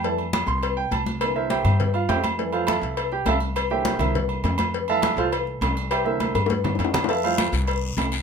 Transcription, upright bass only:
\new Staff \with { instrumentName = "Upright bass" } { \clef bass \time 4/4 \key f \major \tempo 4 = 204 f,4. c,4. c,4~ | c,4. g,4. f,4~ | f,4. c,4. c,4~ | c,4. c,4. f,4~ |
f,4. c,4. c,4~ | c,4. g,4. f,4~ | f,4. c,4. c,4 | }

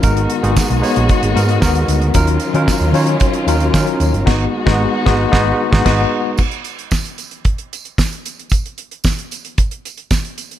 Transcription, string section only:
\new Staff \with { instrumentName = "String section" } { \time 4/4 \key aes \dorian \tempo 4 = 113 << { <aes ces' ges'>1 | <ges des' f'>1 | <aes ces' ges'>1 | r1 |
r1 | } \\ { ees1~ | ees1~ | ees1 | r1 |
r1 | } >> }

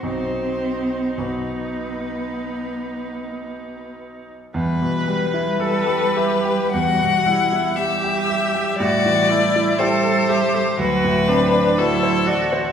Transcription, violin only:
\new Staff \with { instrumentName = "Violin" } { \time 4/4 \key e \minor \tempo 4 = 57 c''4 b'2~ b'8 r8 | r8 b'4. fis''4 e''4 | d''4 c''4 b'4 a'4 | }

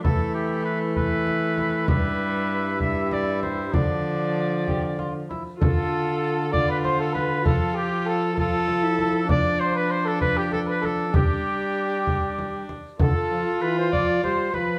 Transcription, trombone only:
\new Staff \with { instrumentName = "Trombone" } { \clef bass \time 6/8 \key d \dorian \tempo 4. = 65 e2. | g,2. | d2~ d8 r8 | d2. |
f2.~ | f2. | g2~ g8 r8 | d8 f8 e8 f8 g8 f8 | }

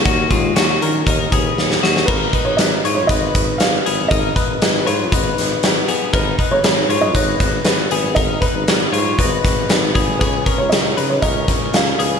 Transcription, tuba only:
\new Staff \with { instrumentName = "Tuba" } { \clef bass \time 4/4 \key gis \dorian \tempo 4 = 118 dis,8 dis,8 dis,8 dis8 dis,8 dis,8 dis,8 dis,8 | gis,,8 r16 gis,,16 gis,,8 gis,8 gis,,8 gis,,8 gis,,8 gis,,8 | gis,,8 r16 gis,,16 gis,,8 gis,8 gis,,8 gis,,8 gis,,8 r8 | gis,,8 r16 gis,,16 gis,,8 gis,8 gis,,8 gis,,8 gis,,8 gis,,8 |
gis,,8 r16 gis,,16 gis,,8 gis,8 gis,,8 gis,,8 gis,,8 gis,,8 | cis,8 r16 cis,16 cis,8 cis8 cis,8 cis,8 cis,8 cis,8 | }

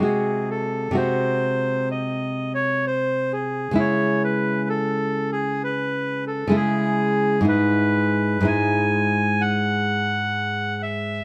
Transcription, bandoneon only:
\new Staff \with { instrumentName = "Bandoneon" } { \time 4/4 \key cis \minor \tempo 4 = 64 gis'8 a'8 bis'4 \tuplet 3/2 { dis''4 cis''8 } bis'8 gis'8 | cis''8 b'8 \tuplet 3/2 { a'4 gis'8 b'4 a'8 } gis'4 | \key e \major b'4 gis''4 fis''4. e''8 | }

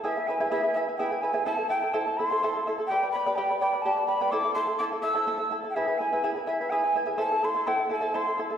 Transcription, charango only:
\new Staff \with { instrumentName = "Charango" } { \time 6/8 \key a \minor \tempo 4. = 84 <e' gis' b' e'' gis''>16 <e' b' gis''>16 <e' b' e'' gis''>16 <e' gis' b' e'' gis''>16 <e' gis' b' e'' gis''>16 <e' b' gis''>16 <e' b' e'' gis''>16 <e' b' gis''>16 <e' gis' b' e'' gis''>16 <e' b' gis''>16 <e' b' e'' gis''>16 <e' gis' b' e'' gis''>16 | <e' a' c'' e'' a''>16 <e' a' a''>16 <e' a' e'' a''>16 <e' a' a''>16 <e' a' c'' e'' a''>16 <e' a' a''>16 <e' a' e'' a''>16 <e' a' c'' e'' a''>16 <e' a' c'' e'' a''>16 <e' a' a''>16 <e' a' e'' a''>16 <e' a' a''>16 | <g' b' d'' g'' b''>16 <b' d'' b''>16 <b' d'' g'' b''>16 <g' b' d'' g'' b''>16 <g' b' d'' g'' b''>16 <b' d'' b''>16 <b' d'' g'' b''>16 <b' d'' b''>16 <g' b' d'' g'' b''>16 <b' d'' b''>16 <b' d'' g'' b''>16 <g' b' d'' g'' b''>16 | <e' a' c'' e'' a''>16 <e' a' a''>16 <e' a' e'' a''>16 <e' a' a''>16 <e' a' c'' e'' a''>16 <e' a' a''>16 <e' a' e'' a''>16 <e' a' c'' e'' a''>16 <e' a' c'' e'' a''>16 <e' a' a''>16 <e' a' e'' a''>16 <e' a' a''>16 |
<e' gis' b' e'' gis''>16 <e' b' gis''>16 <e' b' e'' gis''>16 <e' gis' b' e'' gis''>16 <e' gis' b' e'' gis''>16 <e' b' gis''>16 <e' b' e'' gis''>16 <e' b' gis''>16 <e' gis' b' e'' gis''>16 <e' b' gis''>16 <e' b' e'' gis''>16 <e' gis' b' e'' gis''>16 | <e' a' c'' e'' a''>16 <e' a' a''>16 <e' a' e'' a''>16 <e' a' a''>16 <e' a' c'' e'' a''>16 <e' a' a''>16 <e' a' e'' a''>16 <e' a' c'' e'' a''>16 <e' a' c'' e'' a''>16 <e' a' a''>16 <e' a' e'' a''>16 <e' a' a''>16 | }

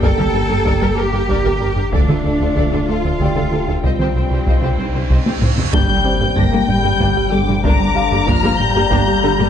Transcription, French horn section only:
\new Staff \with { instrumentName = "French horn section" } { \clef bass \time 6/8 \key g \minor \tempo 4. = 63 << { g'2. | f'2.~ | f'4. ees'4 r8 | g4 bes8 g4 d8 |
d4 f8 g4. | } \\ { bes2. | a2. | g2~ g8 r8 | r2. |
r2. | } >> }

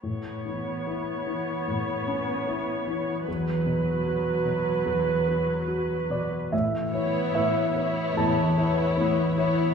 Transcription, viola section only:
\new Staff \with { instrumentName = "Viola section" } { \time 4/4 \key a \major \tempo 4 = 74 <b cis''>1 | <fis b'>2.~ <fis b'>8. r16 | r8 b4 b4 b4 b8 | }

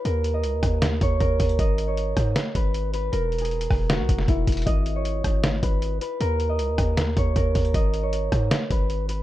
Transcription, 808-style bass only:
\new Staff \with { instrumentName = "808-style bass" } { \clef bass \time 4/4 \key gis \minor \tempo 4 = 156 dis,4 cis,16 dis,16 dis,4 dis,8 dis,8 dis,8 | gis,,4. gis,8 r8 gis,,4. | e,,4. e,,8. b,,16 e,,8 e,,8 e,,8 | gis,,4. gis,,4 gis,,4 r8 |
dis,4 cis,16 dis,16 dis,4 dis,8 dis,8 dis,8 | gis,,4. gis,8 r8 gis,,4. | }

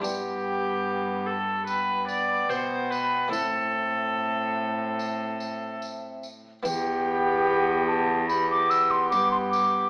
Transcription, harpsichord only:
<<
  \new Staff \with { instrumentName = "Harpsichord" } { \time 4/4 \key e \phrygian \tempo 4 = 73 <g d' g'>1 | <a c' e'>1 | <b e'>1 | }
  \new Staff \with { instrumentName = "Harpsichord" } { \clef bass \time 4/4 \key e \phrygian g,2. b,4 | a,2.~ a,8. r16 | e,2. g,4 | }
>>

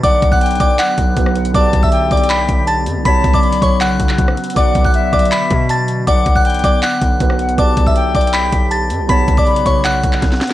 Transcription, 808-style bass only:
\new Staff \with { instrumentName = "808-style bass" } { \clef bass \time 4/4 \key b \minor \tempo 4 = 159 b,,8 b,,4 b,,8 r8 b,,8 b,,4 | b,,8 b,,4 b,,4 b,,4 fis,16 b,,16 | b,,8 b,,4 b,,4 b,,8 b,,8 r8 | b,,8 b,,4 b,,8 r8 b,4. |
b,,8 b,,4 b,,8 r8 b,,8 b,,4 | b,,8 b,,4 b,,4 b,,4 fis,16 b,,16 | b,,8 b,,4 b,,4 b,,8 b,,8 r8 | }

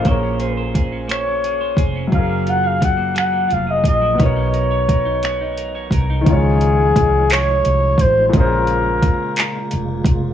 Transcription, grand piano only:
\new Staff \with { instrumentName = "Grand piano" } { \time 6/8 \key des \major \tempo 4. = 58 <bes, bes des' aes' bes'>2. | <ges des' aes' bes'>2. | <ces ces' ees' bes' des''>2. | <ees des' ees' f' des''>2. |
<bes, bes des' aes' c''>2. | }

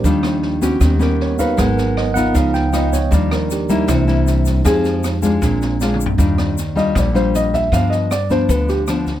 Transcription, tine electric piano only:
<<
  \new Staff \with { instrumentName = "Tine electric piano" } { \time 4/4 \key ees \major \tempo 4 = 156 g'8 r4 ges'8 g'8 bes'8 des''8 f''8 | ges''8 bes'8 ees''8 ges''8 f''8 g''8 ees''8 des''8 | d''8 bes'8 g'8 ees'8 e'2 | r1 |
r8 d''4. r2 | r1 | }
  \new Staff \with { instrumentName = "Tine electric piano" } { \time 4/4 \key ees \major <f g d'>8 r4. <g ces' des'>8 r4. | <ges ces' bes'>2 <f ces' ees'>4. r8 | <f g d'>2 <e bes d'>2 | <aes ees' g'>4. r8 <aes c' d'>8 r4. |
r1 | r1 | }
>>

